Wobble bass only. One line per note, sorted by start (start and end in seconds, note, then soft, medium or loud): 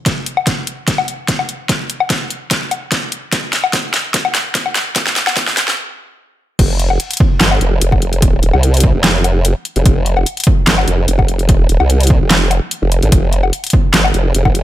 6.59 6.98 F1 loud
7.41 7.60 G1 loud
7.61 7.80 F1 loud
7.82 8.41 F1 loud
8.43 8.52 D#1 loud
8.54 8.93 C2 loud
8.94 9.54 F1 loud
9.76 9.84 F1 medium
9.86 10.25 F1 loud
10.67 10.86 G1 loud
10.88 11.07 F1 medium
11.08 11.50 F1 loud
11.50 11.68 E1 loud
11.69 11.78 D#1 loud
11.80 12.19 C2 loud
12.21 12.60 F1 loud
12.82 13.01 F1 medium
13.03 13.11 G#1 medium
13.12 13.51 F1 medium
13.94 14.13 G1 loud
14.14 14.33 F1 loud
14.35 14.63 F1 loud